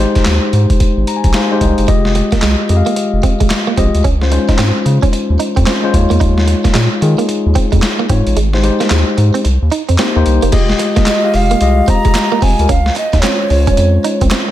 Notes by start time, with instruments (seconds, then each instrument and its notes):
0.00 tine electric piano G#3 D#4 G4 C5
0.15 kick, snare, closed hi-hat
0.25 analog synth bass D#2, snare, clap, closed hi-hat
0.53 analog synth bass G#2, closed hi-hat
0.70 kick, closed hi-hat
0.80 kick, closed hi-hat
0.97 analog synth bass G#1
1.07 tine electric piano A#5, closed hi-hat
1.17 tine electric piano G#5
1.24 analog synth bass A#1, kick, closed hi-hat
1.33 tine electric piano G#3 D#4 G4 C5 F5, snare, clap, closed hi-hat
1.51 tine electric piano G#3 D#4 G4 C5
1.61 analog synth bass C2, tine electric piano D#5, kick, closed hi-hat
1.78 analog synth bass F#1, closed hi-hat
1.88 analog synth bass F1, clean electric guitar G#3, tine electric piano G#3 F4 G4 D#5, kick, closed hi-hat
2.05 snare
2.15 muted clean electric guitar stroke, closed hi-hat
2.32 clean electric guitar A#3, kick, snare, closed hi-hat
2.42 analog synth bass C2, clean electric guitar G#3, snare, clap, closed hi-hat
2.69 analog synth bass F2, tine electric piano G#3 F4 G4 D#5, muted clean electric guitar stroke, closed hi-hat
2.77 tine electric piano F5
2.86 clean electric guitar A#3, closed hi-hat
2.96 muted clean electric guitar stroke, closed hi-hat
3.13 analog synth bass F1
3.23 clean electric guitar C4, kick, closed hi-hat
3.40 analog synth bass G#1, clean electric guitar G#3, kick, closed hi-hat
3.50 muted clean electric guitar stroke, snare, clap, closed hi-hat
3.67 clean electric guitar A#3
3.77 analog synth bass A#1, tine electric piano G#3 F4 G4 D#5, clean electric guitar C4, kick, closed hi-hat
3.95 analog synth bass D2, closed hi-hat
4.04 analog synth bass C#2, clean electric guitar C#4, kick, closed hi-hat
4.21 tine electric piano G#3 C#4 F4 C5, snare
4.31 tine electric piano G#3 C#4 D#4 C5, muted clean electric guitar stroke, closed hi-hat
4.39 tine electric piano F4
4.49 clean electric guitar D#4, kick, snare, closed hi-hat
4.58 analog synth bass G#2, clean electric guitar C4, snare, clap, closed hi-hat
4.86 analog synth bass C#3, muted clean electric guitar stroke, closed hi-hat
5.02 clean electric guitar C#4, kick, closed hi-hat
5.13 muted clean electric guitar stroke, closed hi-hat
5.30 analog synth bass D#2
5.40 clean electric guitar D#4, closed hi-hat
5.56 analog synth bass F2, clean electric guitar C4, kick, closed hi-hat
5.66 tine electric piano G#3 C#4 F4 C5, clean electric guitar C4, snare, clap, closed hi-hat
5.83 tine electric piano G#3 C#4 F4 C5, muted clean electric guitar stroke
5.94 analog synth bass D#2, tine electric piano G#3 D#4 F4 C#5, kick, closed hi-hat
6.10 analog synth bass E2, clean electric guitar A#3, closed hi-hat
6.20 analog synth bass D#2, clean electric guitar D#4, kick, closed hi-hat
6.38 snare
6.48 muted clean electric guitar stroke, closed hi-hat
6.64 clean electric guitar A#3, kick, snare, closed hi-hat
6.74 analog synth bass A#2, clean electric guitar G#3, snare, clap, closed hi-hat
7.01 analog synth bass D#3, tine electric piano G#3 D#4 F4 G#4, muted clean electric guitar stroke, closed hi-hat
7.18 clean electric guitar A#3, closed hi-hat
7.29 muted clean electric guitar stroke, closed hi-hat
7.46 analog synth bass D#2
7.55 clean electric guitar C4, kick, closed hi-hat
7.72 analog synth bass F2, clean electric guitar G#3, kick, closed hi-hat
7.82 muted clean electric guitar stroke, snare, clap, closed hi-hat
7.99 clean electric guitar A#3
8.09 analog synth bass G#2, tine electric piano G#3 D#4 F4 C#5, clean electric guitar C4, kick, closed hi-hat
8.26 analog synth bass A1, closed hi-hat
8.36 analog synth bass G#1, clean electric guitar G#3, closed hi-hat
8.53 tine electric piano G#3 D#4 G4 C5, snare
8.64 tine electric piano G#3 D#4 G4 C5, muted clean electric guitar stroke, closed hi-hat
8.80 clean electric guitar A#3, snare, closed hi-hat
8.90 analog synth bass D#2, clean electric guitar G#3, snare, clap, closed hi-hat
9.17 analog synth bass G#2, muted clean electric guitar stroke, closed hi-hat
9.34 clean electric guitar C4, closed hi-hat
9.45 analog synth bass C2, muted clean electric guitar stroke, closed hi-hat
9.62 analog synth bass D#2
9.72 clean electric guitar D#4, closed hi-hat
9.89 analog synth bass F2, clean electric guitar C4, closed hi-hat
9.98 tine electric piano A#3 D#4 G4 C5, clean electric guitar C4, snare, clap, closed hi-hat
10.16 analog synth bass D#2, tine electric piano A#3 D#4 G4 C5, muted clean electric guitar stroke
10.26 analog synth bass C2, closed hi-hat
10.42 analog synth bass F#1, clean electric guitar A#3, closed hi-hat
10.52 analog synth bass F1, tine electric piano G#3 F4 G4 D#5, clean electric guitar G#3, kick, closed hi-hat, crash
10.69 snare
10.79 muted clean electric guitar stroke, clap, closed hi-hat
10.96 analog synth bass G#1, tine electric piano G#3 F4 G4 D#5, clean electric guitar A#3, kick, snare, closed hi-hat
11.06 clean electric guitar G#3, snare, clap, closed hi-hat
11.07 ocarina D#5, clap
11.24 tine electric piano G#3 F4 G4 F5
11.34 analog synth bass F1, ocarina F5, muted clean electric guitar stroke, open hi-hat
11.51 clean electric guitar A#3, closed hi-hat
11.61 analog synth bass C2, tine electric piano G#3 F4 G4 D#5, muted clean electric guitar stroke, closed hi-hat
11.88 clean electric guitar C4, ocarina A#5, kick, closed hi-hat
12.05 analog synth bass F1, clean electric guitar G#3, kick, closed hi-hat
12.14 muted clean electric guitar stroke, snare, clap, closed hi-hat
12.32 clean electric guitar A#3
12.42 analog synth bass F1, clean electric guitar C4, ocarina G#5, kick, open hi-hat
12.59 analog synth bass D2, tine electric piano G#3 F4 G4 A#4, closed hi-hat
12.69 analog synth bass C#2, clean electric guitar C#4, ocarina F5, kick, closed hi-hat
12.86 snare
12.96 ocarina D#5, muted clean electric guitar stroke, clap, closed hi-hat
13.13 analog synth bass D#2, clean electric guitar D#4, ocarina D#5, kick, snare, closed hi-hat
13.20 tine electric piano G#3, clean electric guitar C4, ocarina C#5, snare, clap, closed hi-hat
13.24 tine electric piano C#4 F4 C5
13.50 analog synth bass C#2, tine electric piano G#3 C#4 F4 C#5, muted clean electric guitar stroke, open hi-hat
13.67 clean electric guitar C#4, kick, closed hi-hat
13.77 analog synth bass F2, muted clean electric guitar stroke, closed hi-hat
14.04 clean electric guitar D#4, closed hi-hat
14.21 analog synth bass C2, clean electric guitar C4, kick, closed hi-hat
14.30 clean electric guitar C4, snare, clap, closed hi-hat